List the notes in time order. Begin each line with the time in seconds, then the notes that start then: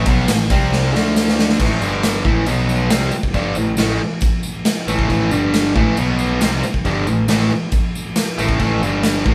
0.06 B1 B2 F#3 B3, kick, ride
0.28 A1 A2 E3, snare, ride, tambourine
0.50 C2 C3 G3 C4, kick, ride
0.73 snare
0.94 D2 D3 A3 D4, snare
1.16 snare, tambourine
1.28 snare
1.39 snare
1.49 snare
1.59 A1 A2 E3 A3, kick, crash, tambourine
1.80 G1 G2 D3 G3, tambourine
2.03 snare, tambourine, crash
2.24 A1 A2 E3 A3, kick
2.46 B1 B2 F#3 B3, tambourine, crash
2.69 tambourine
2.90 C2 C3 G3 C4, snare, tambourine, crash
3.11 muted distorted electric guitar stroke, muted picked electric bass stroke, tambourine
3.23 kick
3.34 G1 G2 D3 G3, kick, tambourine, crash
3.55 A1 A2 E3, tambourine
3.77 A1 A2 E3 A3, snare, tambourine, crash
4.21 kick, tambourine, crash
4.43 tambourine
4.65 snare, tambourine, crash
4.87 A1 A2 E3 A3, tambourine
4.99 kick
5.09 A1 A2 E3 A3, kick, tambourine, crash
5.31 G1 G2 D3 G3, tambourine
5.53 snare, tambourine, crash
5.75 A1 A2 E3 A3, kick
5.97 B1 B2 F#3 B3, tambourine, crash
6.19 tambourine
6.41 C2 C3 G3 C4, snare, tambourine, crash
6.63 muted distorted electric guitar stroke, muted picked electric bass stroke, tambourine
6.74 kick
6.85 G1 G2 D3 G3, kick, tambourine, crash
7.07 A1 A2 E3, tambourine
7.28 A1 A2 E3 A3, snare, tambourine, crash
7.50 tambourine
7.72 kick, tambourine, crash
7.95 tambourine
8.16 snare, tambourine, crash
8.38 A1 A2 E3 A3, tambourine
8.49 kick
8.59 A1 A2 E3 A3, kick, tambourine, crash
8.81 G1 G2 D3 G3, tambourine
9.03 snare, tambourine, crash
9.26 A1 A2 E3 A3, kick